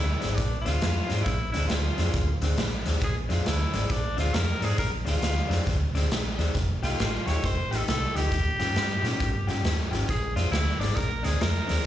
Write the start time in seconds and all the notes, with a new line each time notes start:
Already playing: D2 E4
0.20 G#1 A#2 G#3 C4 D4, snare, closed hi-hat
0.35 A#1 D4, kick, snare, closed hi-hat
0.61 C4 F4
0.65 D2 A#2 G#3 D4, snare, closed hi-hat
0.82 F2, snare, closed hi-hat
1.09 G#2 A#2 G#3 C4 D4, snare, closed hi-hat
1.23 A#1 E4, kick, snare, closed hi-hat
1.52 D2 A#2 G#3 C4 D4 E4, snare, closed hi-hat
1.68 D2 F4, snare, closed hi-hat
1.98 F2 A#2 G#3 C4 D4, snare, closed hi-hat
2.14 D2, kick, snare, closed hi-hat
2.41 D2 A#2 G#3 C4 D4, snare, closed hi-hat
2.57 A#1, snare, closed hi-hat
2.86 D#2 A#2 G#3 C4 D4, snare, closed hi-hat
3.01 A#1 G#4, kick, snare, closed hi-hat
3.29 F2 A#2 G#3 C4 D4 F4, snare, closed hi-hat
3.46 D2 E4, snare, closed hi-hat
3.73 G#1 A#2 G#3 C4 D4, snare, closed hi-hat
3.90 A#1 D4, kick, snare, closed hi-hat
4.17 D2 A#2 G#3 C4 D4 F4, snare, closed hi-hat
4.34 F2 A#4, snare, closed hi-hat
4.61 G#2 A#2 G#3 C4 D4 G#4, snare, closed hi-hat
4.78 A#1 A#4, kick, snare, closed hi-hat
5.05 D2 A#2 G#3 C4 D4 F4, snare, closed hi-hat
5.21 D2, snare, closed hi-hat
5.48 F2 A#2 G#3 C4 D4, snare, closed hi-hat
5.67 D2, kick, snare, closed hi-hat
5.94 D2 A#2 G#3 C4 D4, snare, closed hi-hat
6.10 A#1, snare, closed hi-hat
6.38 D#2 A#2 G#3 C4 D4, snare, closed hi-hat
6.55 F1, kick, snare, closed hi-hat
6.82 C2 F3 A3 D#4 F4 G4, snare, closed hi-hat
6.99 A1, snare, closed hi-hat
7.26 D#2 F3 A3 D#4 G4 C#5, snare, closed hi-hat
7.44 F1 C5, kick, snare, closed hi-hat
7.71 A1 F3 A3 D#4 G4 A4, snare, closed hi-hat
7.88 C2 A4, snare, closed hi-hat
8.15 D2 F3 A3 D#4 G4, snare, closed hi-hat
8.32 D#2, kick, snare, closed hi-hat
8.59 G2 D#3 C#4 F4 G4, snare, closed hi-hat
8.76 G2, snare, closed hi-hat
9.03 A#2 D#3 C#4 F4 G4, snare, closed hi-hat
9.20 G2, kick, snare, closed hi-hat
9.47 G2 D#3 C#4 F4 G4, snare, closed hi-hat
9.63 D#2, snare, closed hi-hat
9.91 G#1 D#3 C#4 F4 G4, snare, closed hi-hat
10.09 A#1 G#4, kick, snare, closed hi-hat
10.35 F2 A#2 G#3 C4 D4 F4, snare, closed hi-hat
10.51 D2 E4, snare, closed hi-hat
10.79 G#1 A#2 G#3 C4 D4, snare, closed hi-hat
10.96 A#1 A#4, kick, snare, closed hi-hat
11.23 D2 A#2 G#3 C4 D4 G#4, snare, closed hi-hat
11.41 F2 A#4, snare, closed hi-hat
11.67 D#2 A#2 G#3 C4 D4, snare, closed hi-hat